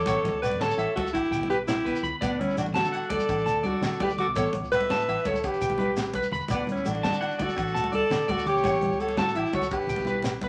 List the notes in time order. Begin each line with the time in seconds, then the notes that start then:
Already playing: A4 C#5
0.06 A1 B3 C#5, kick, closed hi-hat, muted conga, low agogo, shekere
0.16 low conga
0.23 A1, closed hi-hat, high conga, low conga, shekere
0.32 C#2
0.42 A3 B4 D5, closed hi-hat, low conga, low agogo, shekere
0.51 muted conga, low conga
0.60 A2 A4 C#5 A5, snare, closed hi-hat, high conga, low conga
0.71 shekere
0.77 A1 E4 E5, closed hi-hat, low agogo, shekere
0.96 C#2 F#4 A4, kick, closed hi-hat, muted conga, low conga, shekere
1.07 low conga, shekere
1.13 E1 D4 E4 G4, kick, closed hi-hat, low conga, low agogo
1.24 shekere
1.31 C#2 G5, closed hi-hat, shekere
1.35 low conga
1.39 B1, muted conga
1.50 E4 G4 B4, closed hi-hat, high conga
1.68 E4 G4, snare, closed hi-hat, high conga, low agogo, shekere
1.85 B3 B4, kick, snare, closed hi-hat, low conga, shekere
1.95 shekere
2.03 C#2 B5, closed hi-hat, low conga
2.21 D2 B3 D4 D5, kick, closed hi-hat, muted conga, low agogo, shekere
2.31 low conga
2.39 C#4 E4, closed hi-hat, high conga, low conga
2.49 low conga, shekere
2.57 A1 A3 D4 F#4, closed hi-hat, low agogo, shekere
2.66 muted conga, low conga
2.74 F#4 A5, snare, closed hi-hat, high conga, low conga
2.79 A4
2.84 D3, low conga, shekere
2.92 E4 F#5, closed hi-hat, low agogo
3.03 shekere
3.10 D2 A4 D5, kick, closed hi-hat, muted conga, low conga
3.19 high conga, low conga, shekere
3.28 A1 D4, kick, closed hi-hat, low agogo, shekere
3.38 shekere
3.46 D2 A5, closed hi-hat, low conga, shekere
3.63 C#2 D4 F#4 D5, closed hi-hat, high conga, low conga
3.67 A4
3.74 low conga
3.81 D3, snare, closed hi-hat, low conga, low agogo, shekere
3.92 low conga, shekere
4.00 D2 A3 G4 B4 D5, kick, closed hi-hat, muted conga
4.10 high conga, low conga, shekere
4.18 F#4 A4 D6, closed hi-hat, low conga
4.27 B1
4.35 A1 B3 A4 C#5, kick, closed hi-hat, muted conga, low agogo, shekere
4.39 C#5
4.44 low conga
4.53 A1, closed hi-hat, high conga, low conga
4.62 C#2, low conga, shekere
4.72 A3 B4 E5, closed hi-hat, low agogo, shekere
4.81 muted conga, low conga
4.89 A2 A5, snare, closed hi-hat, high conga, low conga
4.99 low conga, shekere
5.08 A1 E4 E5, closed hi-hat, low agogo
5.18 shekere
5.25 C#2 A4 C#5, kick, closed hi-hat, muted conga, low conga
5.34 high conga, low conga, shekere
5.44 E1 D4 G4, kick, closed hi-hat, low agogo, shekere
5.48 B4
5.53 shekere
5.61 C#2 G5, closed hi-hat, low conga, shekere
5.69 B1, muted conga
5.78 E4 B4, closed hi-hat, high conga, low conga
5.87 low conga
5.97 snare, closed hi-hat, low conga, low agogo, shekere
6.05 low conga, shekere
6.14 B4, kick, closed hi-hat, muted conga
6.23 high conga, low conga, shekere
6.31 E1 B5, closed hi-hat, low conga
6.41 shekere
6.48 D2 B3 D5, kick, closed hi-hat, muted conga, low agogo, shekere
6.54 B3 D4
6.58 low conga
6.67 closed hi-hat, high conga, low conga
6.72 C#4 E4
6.76 low conga, shekere
6.85 A1 A3 D4, closed hi-hat, low agogo, shekere
6.91 F#4
6.95 muted conga
7.03 A5, snare, closed hi-hat, high conga, low conga
7.12 D3, low conga, shekere
7.21 E4 F#5, closed hi-hat, low agogo
7.31 shekere
7.39 D2 F#4 A4 D5, kick, closed hi-hat, muted conga, low conga
7.49 high conga, low conga, shekere
7.56 A1 D4, kick, closed hi-hat, low agogo, shekere
7.67 shekere
7.75 D2 A5, closed hi-hat, low conga, shekere
7.84 muted conga
7.92 C#2 D4 A4 D5, closed hi-hat, high conga, low conga
8.01 low conga
8.10 D3, snare, closed hi-hat, low conga, low agogo, shekere
8.21 low conga, shekere
8.28 D2 A3 A4 D5, kick, closed hi-hat, muted conga
8.32 F#4
8.38 high conga, low conga, shekere
8.46 G4 C#5 D6, closed hi-hat, low conga
8.55 B1, shekere
8.64 A1 B3 C#5, kick, closed hi-hat, muted conga, low agogo, shekere
8.73 low conga, shekere
8.81 A1, closed hi-hat, high conga, low conga
8.91 C#2, low conga, shekere
8.99 A3 A4 C#5, closed hi-hat, low conga, low agogo
9.08 muted conga, shekere
9.17 A2 F#4 A4 A5, snare, closed hi-hat, high conga, low conga
9.27 low conga, shekere
9.35 A1 E4 G4 E5, closed hi-hat, low agogo
9.44 low conga, shekere
9.53 C#2 F#4 A4 C#5, kick, closed hi-hat, muted conga, low conga, shekere
9.62 high conga, shekere
9.71 E1 D4 G4 B4, kick, closed hi-hat, low agogo, shekere
9.79 low conga, shekere
9.87 C#2 G5, closed hi-hat, low conga, shekere
9.96 B1, muted conga, low conga, shekere
10.05 E4 B4, closed hi-hat, high conga, shekere
10.15 low conga
10.22 snare, closed hi-hat, low conga, low agogo, shekere
10.34 low conga
10.41 B3 B4, kick, closed hi-hat, muted conga